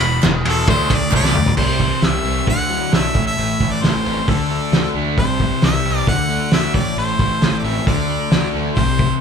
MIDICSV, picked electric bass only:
0, 0, Header, 1, 2, 480
1, 0, Start_track
1, 0, Tempo, 449438
1, 1681, Time_signature, 4, 2, 24, 8
1, 9834, End_track
2, 0, Start_track
2, 0, Title_t, "Picked electric bass"
2, 0, Program_c, 0, 34
2, 3, Note_on_c, 0, 28, 94
2, 197, Note_off_c, 0, 28, 0
2, 252, Note_on_c, 0, 28, 92
2, 442, Note_off_c, 0, 28, 0
2, 496, Note_on_c, 0, 28, 86
2, 684, Note_off_c, 0, 28, 0
2, 726, Note_on_c, 0, 38, 89
2, 918, Note_off_c, 0, 38, 0
2, 961, Note_on_c, 0, 38, 86
2, 1155, Note_off_c, 0, 38, 0
2, 1205, Note_on_c, 0, 36, 93
2, 1397, Note_off_c, 0, 36, 0
2, 1437, Note_on_c, 0, 38, 80
2, 1632, Note_off_c, 0, 38, 0
2, 1678, Note_on_c, 0, 36, 96
2, 2008, Note_off_c, 0, 36, 0
2, 2162, Note_on_c, 0, 36, 84
2, 2326, Note_off_c, 0, 36, 0
2, 2394, Note_on_c, 0, 36, 79
2, 2561, Note_off_c, 0, 36, 0
2, 2644, Note_on_c, 0, 38, 73
2, 2972, Note_off_c, 0, 38, 0
2, 3130, Note_on_c, 0, 35, 85
2, 3292, Note_off_c, 0, 35, 0
2, 3370, Note_on_c, 0, 33, 86
2, 3532, Note_off_c, 0, 33, 0
2, 3606, Note_on_c, 0, 33, 91
2, 3770, Note_off_c, 0, 33, 0
2, 3844, Note_on_c, 0, 33, 84
2, 4008, Note_off_c, 0, 33, 0
2, 4100, Note_on_c, 0, 33, 87
2, 4259, Note_off_c, 0, 33, 0
2, 4332, Note_on_c, 0, 33, 87
2, 4494, Note_off_c, 0, 33, 0
2, 4571, Note_on_c, 0, 38, 87
2, 4898, Note_off_c, 0, 38, 0
2, 5044, Note_on_c, 0, 38, 82
2, 5209, Note_off_c, 0, 38, 0
2, 5289, Note_on_c, 0, 38, 84
2, 5532, Note_on_c, 0, 36, 94
2, 5548, Note_off_c, 0, 38, 0
2, 5859, Note_off_c, 0, 36, 0
2, 6016, Note_on_c, 0, 36, 91
2, 6177, Note_off_c, 0, 36, 0
2, 6247, Note_on_c, 0, 36, 80
2, 6411, Note_off_c, 0, 36, 0
2, 6486, Note_on_c, 0, 38, 88
2, 6815, Note_off_c, 0, 38, 0
2, 6967, Note_on_c, 0, 38, 79
2, 7131, Note_off_c, 0, 38, 0
2, 7203, Note_on_c, 0, 33, 79
2, 7368, Note_off_c, 0, 33, 0
2, 7448, Note_on_c, 0, 33, 90
2, 7612, Note_off_c, 0, 33, 0
2, 7680, Note_on_c, 0, 33, 86
2, 7846, Note_off_c, 0, 33, 0
2, 7915, Note_on_c, 0, 33, 91
2, 8083, Note_off_c, 0, 33, 0
2, 8151, Note_on_c, 0, 33, 86
2, 8320, Note_off_c, 0, 33, 0
2, 8403, Note_on_c, 0, 38, 82
2, 8733, Note_off_c, 0, 38, 0
2, 8880, Note_on_c, 0, 38, 78
2, 9046, Note_off_c, 0, 38, 0
2, 9124, Note_on_c, 0, 38, 80
2, 9289, Note_off_c, 0, 38, 0
2, 9363, Note_on_c, 0, 36, 91
2, 9692, Note_off_c, 0, 36, 0
2, 9834, End_track
0, 0, End_of_file